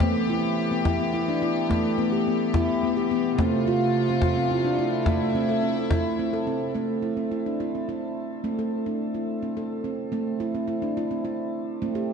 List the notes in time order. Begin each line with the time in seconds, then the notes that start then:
Already playing: E3 G4
0.00 A3 B3, cajon bass, cajon slap
0.28 E4, cajon slap
0.71 B3
0.85 E4, cajon bass, cajon slap
0.99 B3, cajon slap
1.14 E4
1.28 D4
1.42 E4
1.69 A3, cajon bass, cajon slap
1.98 B3, cajon slap
2.12 G4
2.27 B3
2.54 E4, cajon bass, cajon slap
2.68 cajon slap
2.83 B3
2.97 G4
3.11 B3
3.37 C3 A3 C4 F4, cajon bass, cajon slap
3.66 F4, cajon slap
4.10 C4
4.22 F4, cajon bass, cajon slap
4.36 C4, cajon slap
4.51 E4
4.65 D4
4.79 E4
5.06 A3 E4, cajon bass, cajon slap
5.34 C4, cajon slap
5.48 A4, cajon slap
5.63 C4, cajon slap
5.91 E4, cajon bass, cajon slap
6.05 cajon slap
6.19 C4, cajon slap
6.33 A4
6.47 C4, cajon slap
6.75 A3 C4
7.02 E4
7.17 C4
7.31 E4
7.46 D4
7.60 E4
7.75 C4
7.89 E4
8.44 A3 C4
8.59 A4
8.86 D4
9.14 E4
9.42 C4
9.57 A4
9.84 C4
10.12 A3 C4
10.40 E4
10.55 C4
10.68 E4
10.82 D4
10.97 E4
11.11 C4
11.25 E4
11.82 A3 C4
11.95 G4